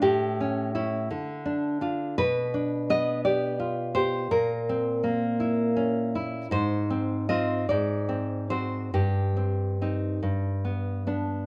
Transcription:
\new Staff \with { instrumentName = "Nylon-string guitar" } { \time 6/8 \key d \phrygian \tempo 4. = 55 << { g'2~ g'8 r8 | \key g \phrygian b'4 ees''8 d''4 c''8 | bes'2~ bes'8 r8 | c''4 ees''8 d''4 c''8 |
g'2~ g'8 r8 | } \\ { a,8 cis'8 <cis' e'>8 d8 d'8 <d' f'>8 | b,8 d'8 b8 g'8 f'8 g'8 | bes,8 c'8 bes8 e'8 des'8 e'8 | aes,8 c'8 <c' f'>8 aes,8 c'8 <c' ges'>8 |
g,8 c'8 <c' ees'>8 g,8 b8 <b d'>8 | } >> }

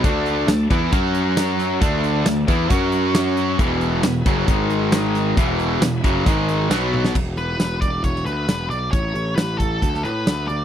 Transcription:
<<
  \new Staff \with { instrumentName = "Lead electric guitar" } { \time 4/4 \key e \mixolydian \tempo 4 = 135 r1 | r1 | r1 | r1 |
r8 b'4 d''8 cis''8 b'4 d''8 | cis''4 b'8 a'4 b'4 d''8 | }
  \new Staff \with { instrumentName = "Tonewheel organ" } { \time 4/4 \key e \mixolydian <a d' a' d''>2 <fis cis' fis' cis''>2 | <a d' a' d''>2 <fis cis' fis' cis''>2 | <b e' gis' b'>2 <gis dis' gis' dis''>2 | <b e' gis' b'>2 <gis dis' gis' dis''>4 <b fis' b' fis''>4 |
r1 | r1 | }
  \new Staff \with { instrumentName = "Distorted electric guitar" } { \clef bass \time 4/4 \key e \mixolydian <d a d'>4 <d a>8 <e b e'>8 <fis cis' fis'>2 | <d a d'>4 <d a>8 <e b e'>8 <fis cis' fis'>2 | <e, b, e>4 <e, b,>8 <fis, cis fis>8 <gis, dis gis>2 | <e, b, e>4 <e, b,>8 <fis, cis fis>8 <gis, dis gis>4 <b, fis b>4 |
r1 | r1 | }
  \new Staff \with { instrumentName = "Overdriven electric guitar" } { \clef bass \time 4/4 \key e \mixolydian <d a d'>4 <d a>8 <e b e'>8 <fis cis' fis'>2 | <d a d'>4 <d a>8 <e b e'>8 <fis cis' fis'>2 | <e, b, e>4 <e, b,>8 <fis, cis fis>8 <gis, dis gis>2 | <e, b, e>4 <e, b,>8 <fis, cis fis>8 <gis, dis gis>4 <b, fis b>4 |
r1 | r1 | }
  \new Staff \with { instrumentName = "Picked electric bass" } { \clef bass \time 4/4 \key e \mixolydian d,4 d,8 e,8 fis,2 | d,4 d,8 e,8 fis,2 | e,,4 e,,8 fis,,8 gis,,2 | e,,4 e,,8 fis,,8 gis,,4 b,,4 |
e,,4 e,,8 e,,8 e,,8 d,8 e,,8 b,,8 | a,,8 a,,8 a,,4 d,8 a,8 d,8 d,8 | }
  \new DrumStaff \with { instrumentName = "Drums" } \drummode { \time 4/4 <hh bd>8 hh8 <hh sn tamb>8 <hh bd>8 <hh bd>8 hh8 <hh sn tamb>8 <hh sn>8 | <hh bd>8 hh8 <hh sn tamb>8 <hh bd>8 <hh bd>8 hh8 <hh sn tamb>8 hh8 | <hh bd>8 hh8 <hh sn tamb>8 <hh bd>8 <hh bd>8 hh8 <hh sn tamb>8 <hh sn>8 | <hh bd>8 hh8 <hh sn tamb>8 <hh bd>8 <hh bd>8 hh8 <hh sn tamb>8 tommh16 sn16 |
<cymc bd>8 hh8 <hh sn tamb>8 <hh bd>8 <hh bd>16 sn16 hh8 <hh sn tamb>8 hh8 | <hh bd>8 hh8 <hh sn tamb>8 <hh bd>8 <hh bd>16 sn16 hh8 <hh sn tamb>8 hh8 | }
>>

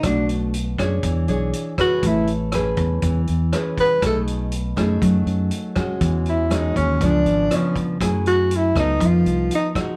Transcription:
<<
  \new Staff \with { instrumentName = "Tenor saxophone" } { \time 4/4 \key e \major \tempo 4 = 120 d'8 r2. fis'8 | e'8 r2. b'8 | a'8 r2. r8 | r8 e'8 dis'8 cis'8 d'4 cis'8 r8 |
r8 fis'8 e'8 dis'8 f'4 ees'8 r8 | }
  \new Staff \with { instrumentName = "Nylon-string guitar" } { \time 4/4 \key e \major << { <a d' fis'>4 r8 <d' gis' cis''>4 <d' gis' cis''>4 <cis' gis' b'>8~ | <cis' gis' b'>4 <cis' gis' b'>4. r8 <cis' gis' b'>4 | <a dis' gis'>4 r8 <a dis' gis'>2 <gis cis' fis'>8~ | <gis cis' fis'>4 <gis cis' fis'>4 <eis b d'>4 <eis b d'>4 |
<a e' gis'>4. <b dis' a'>2 <gis ees' fis'>8 | } \\ { b,2 e2 | a2 e2 | b,2 fis2 | e2 cis2 |
fis2 f2 | } >> }
  \new Staff \with { instrumentName = "Fingered electric bass" } { \clef bass \time 4/4 \key e \major b,,4. fis,8 e,8 b,,8 r4 | a,,4. e,8 e,8 e,8 r4 | b,,4. fis,8 fis,8 fis,8 r4 | e,4. dis,8 cis,8 gis,,8 r4 |
fis,4. cis,8 f,8 c,8 r4 | }
  \new DrumStaff \with { instrumentName = "Drums" } \drummode { \time 4/4 <hh bd ss>8 hh8 hh8 <hh bd ss>8 <hh bd>8 hh8 hh8 <hh bd ss>8 | <hh bd>8 hh8 <hh ss>8 <hh bd>8 <hh bd>8 hh8 <hh ss>8 <hh bd>8 | <hh bd ss>8 hh8 hh8 <hh bd ss>8 <hh bd>8 hh8 hh8 <hh bd ss>8 | <hh bd>8 hh8 <hh ss>8 <hh bd>8 <hh bd>8 hh8 <hh ss>8 <hh bd>8 |
<hh bd ss>8 hh8 hh8 <hh bd ss>8 <hh bd>8 hh8 hh8 <hh bd ss>8 | }
>>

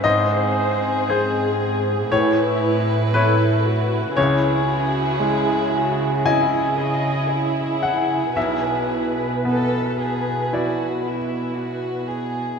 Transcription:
<<
  \new Staff \with { instrumentName = "Grand piano" } { \time 4/4 \key cis \minor \tempo 4 = 57 << { dis''2 cis''4 b'4 | cis''2 gis''4. fis''8 | e''2.~ e''8 r8 | } \\ { gis,4 <gis' bis'>4 a,4 <e' cis''>4 | cis,4 gis4 <e' dis''>2 | b,,4 b4 <e' d''>2 | } >> }
  \new Staff \with { instrumentName = "Violin section" } { \time 4/4 \key cis \minor <bis gis'>2 <e' b'>2 | <e' gis'>2 <e' gis'>2 | <e' gis'>4 a'8 gis'8 fis'8 e'8 fis'8 gis'8 | }
  \new Staff \with { instrumentName = "Viola section" } { \time 4/4 \key cis \minor bis'4 gis'4 e'4 a'8 fis'8 | e'8 fis'8 gis'8 fis'8 e'8 dis''8 e'4 | b'2.~ b'8 r8 | }
  \new Staff \with { instrumentName = "Cello section" } { \clef bass \time 4/4 \key cis \minor gis,2 a,2 | cis1 | b,1 | }
>>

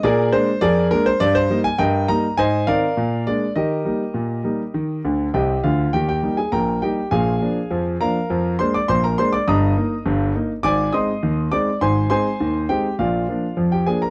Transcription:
<<
  \new Staff \with { instrumentName = "Grand piano" } { \time 2/4 \key bes \major \tempo 4 = 102 <aes' bes' d''>8 c''8 <aes' bes' d''>8 bes'16 c''16 | \key ees \major d''16 c''8 aes''16 <bes' ees'' g''>8 bes''8 | <c'' ees'' aes''>8 <bes' d'' f''>4 d''8 | <g' bes' ees''>2~ |
<g' bes' ees''>4 <g' ees'' g''>8 <f' f''>8 | <g' g''>16 <g' g''>8 <aes' aes''>16 <bes' g'' bes''>8 <g' g''>8 | <aes' f'' aes''>4. <bes' f'' bes''>8~ | <bes' f'' bes''>8 <c'' c'''>16 <d'' d'''>16 <c'' c'''>16 <bes' bes''>16 <c'' c'''>16 <d'' d'''>16 |
<ees'' bes'' ees'''>4 r4 | <d'' aes'' d'''>8 <ees'' c''' ees'''>4 <d'' d'''>8 | <c'' aes'' c'''>8 <c'' aes'' c'''>4 <g' g''>8 | <f' d'' f''>4~ <f' d'' f''>16 <g' g''>16 <aes' aes''>16 <bes' bes''>16 | }
  \new Staff \with { instrumentName = "Grand piano" } { \clef bass \time 2/4 \key bes \major bes,8 <aes bes d'>8 f,8 <aes bes d'>8 | \key ees \major g,8 <g bes ees'>8 g,8 <g bes ees'>8 | aes,8 <ees c' ees'>8 bes,8 <aes bes d'>8 | ees8 <g bes ees'>8 bes,8 <g bes ees'>8 |
ees8 <d, d>8 <c, c>8 <d, d>8 | <ees, ees>8 <g bes ees'>8 <bes,, bes,>8 <g bes ees'>8 | <bes,, bes,>8 <f bes d'>8 <f, f>8 <f bes d'>8 | <f, f>8 <aes bes d'>8 <bes,, bes,>8 <aes bes d'>8 |
<g,, g,>8 <bes ees'>8 <g,, g,>8 <bes ees'>8 | <aes,, aes,>8 <aes c' ees'>8 <ees, ees>8 <aes c' ees'>8 | <aes,, aes,>8 <aes c' ees'>8 <ees, ees>8 <aes c' ees'>8 | <bes,, bes,>8 <f bes d'>8 <f, f>8 <f bes d'>8 | }
>>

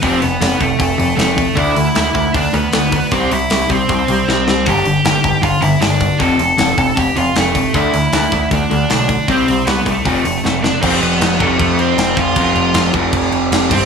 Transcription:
<<
  \new Staff \with { instrumentName = "Lead electric guitar" } { \time 4/4 \key f \lydian \tempo 4 = 156 <c' c''>8 <b b'>4 <a a'>4. <a a'>4 | <e' e''>2 <d' d''>8 <b b'>4. | <c' c''>8 <e' e''>4 <c' c''>4. <c' c''>4 | <g' g''>2 <f' f''>8 <e' e''>8 <d' d''>4 |
<a' a''>2 <g' g''>8 <f' f''>8 <a a'>4 | <e' e''>2 <d' d''>4 <d' d''>4 | <c' c''>4 <b b'>8 <a a'>2 <d' d''>8 | <c' c''>8 <b b'>4 <a a'>8 <a a'>8 <c' c''>4 <f' f''>8~ |
<f' f''>4. r2 <c' c''>8 | }
  \new Staff \with { instrumentName = "Overdriven electric guitar" } { \clef bass \time 4/4 \key f \lydian <f, c f>8 <f, c>8 <f, c>8 <f, c>8 <f, c>8 <f, c>8 <f, c>8 <f, c>8 | <d a d'>8 <d a>8 <d a>8 <d a>8 <d a>8 <d a>8 <d a>8 <d a>8 | <c g c'>8 <c g>8 <c g>8 <c g>8 <c g>8 <c g>8 <c g>8 <c g>8 | <g, d g>8 <g, d>8 <g, d>8 <g, d>8 <g, d>8 <g, d>8 <g, d>8 <g, d>8 |
<f, c f>8 <f, c>8 <f, c>8 <f, c>8 <f, c>8 <f, c>8 <f, c>8 <f, c>8 | <d a d'>8 <d a>8 <d a>8 <d a>8 <d a>8 <d a>8 <d a>8 <d a>8 | <c g c'>8 <c g>8 <c g>8 <c g>8 <f, c f>8 <f, c>8 <f, c>8 <f, c>8 | <f, c f>4. <f, c f>2~ <f, c f>8 |
<f, c f>4. <f, c f>2 <g, d g>8 | }
  \new Staff \with { instrumentName = "Picked electric bass" } { \clef bass \time 4/4 \key f \lydian f,,8 f,,8 f,,8 f,,8 f,,8 f,,8 f,,4 | d,8 d,8 d,8 d,8 d,8 d,8 d,4 | c,8 c,8 c,8 c,8 c,8 c,8 c,4 | g,,8 g,,8 g,,8 g,,8 g,,8 g,,8 g,,4 |
f,,8 f,,8 f,,8 f,,8 f,,8 f,,8 f,,4 | d,8 d,8 d,8 d,8 d,8 d,8 b,,4 | c,8 c,8 c,8 c,8 f,,8 f,,8 f,,4 | f,,8 f,,8 f,,8 f,,8 f,4 f,,8 f,,8 |
f,,8 f,,8 f,,8 f,,8 f,,8 f,,8 f,,8 g,,8 | }
  \new DrumStaff \with { instrumentName = "Drums" } \drummode { \time 4/4 <hho bd>8 hho8 <hho sn>8 <hho bd>8 <hho bd>8 hho8 <hho sn>8 <hho bd>8 | <hho bd>8 hho8 <hho sn>8 <hho bd>8 <hho bd>8 hho8 <hho sn>8 <hho bd>8 | <hho bd>8 hho8 <hho sn>8 <hho bd>8 <hho bd>8 hho8 sn8 sn8 | <hho bd>8 hho8 <hho sn>8 <hho bd>8 <hho bd>8 hho8 <hho sn>8 <hho bd>8 |
<hho bd>8 hho8 <hho sn>8 <hho bd>8 <hho bd>8 hho8 <hho sn>8 <hho bd>8 | <hho bd>8 hho8 <hho sn>8 <hho bd>8 <hho bd>8 hho8 <hho sn>8 <hho bd>8 | <hho bd>8 hho8 <hho sn>8 <hho bd>8 <hho bd>8 hho8 sn8 sn8 | <cymc bd>8 cymc8 <cymc sn>8 <cymc bd>8 <cymc bd>8 cymc8 <cymc sn>8 <cymc bd>8 |
<cymc bd>8 cymc8 <cymc sn>8 <cymc bd>8 <cymc bd>8 cymc8 <cymc sn>8 <cymc bd>8 | }
>>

